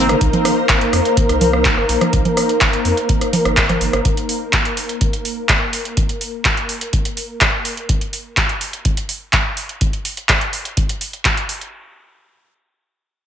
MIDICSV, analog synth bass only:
0, 0, Header, 1, 2, 480
1, 0, Start_track
1, 0, Key_signature, -3, "minor"
1, 0, Tempo, 480000
1, 211, Time_signature, 4, 2, 24, 8
1, 13262, End_track
2, 0, Start_track
2, 0, Title_t, "Analog synth bass"
2, 0, Program_c, 0, 38
2, 0, Note_on_c, 0, 31, 94
2, 138, Note_off_c, 0, 31, 0
2, 211, Note_on_c, 0, 36, 99
2, 286, Note_off_c, 0, 36, 0
2, 691, Note_on_c, 0, 31, 100
2, 839, Note_off_c, 0, 31, 0
2, 931, Note_on_c, 0, 41, 79
2, 1005, Note_off_c, 0, 41, 0
2, 1293, Note_on_c, 0, 36, 86
2, 1697, Note_off_c, 0, 36, 0
2, 1773, Note_on_c, 0, 31, 97
2, 1845, Note_off_c, 0, 31, 0
2, 1891, Note_on_c, 0, 34, 88
2, 1966, Note_off_c, 0, 34, 0
2, 2131, Note_on_c, 0, 36, 100
2, 2206, Note_off_c, 0, 36, 0
2, 2611, Note_on_c, 0, 31, 97
2, 2759, Note_off_c, 0, 31, 0
2, 2851, Note_on_c, 0, 41, 80
2, 2925, Note_off_c, 0, 41, 0
2, 3453, Note_on_c, 0, 31, 89
2, 3688, Note_off_c, 0, 31, 0
2, 3694, Note_on_c, 0, 31, 93
2, 3765, Note_off_c, 0, 31, 0
2, 3811, Note_on_c, 0, 31, 94
2, 3886, Note_off_c, 0, 31, 0
2, 3933, Note_on_c, 0, 31, 96
2, 4005, Note_off_c, 0, 31, 0
2, 13262, End_track
0, 0, End_of_file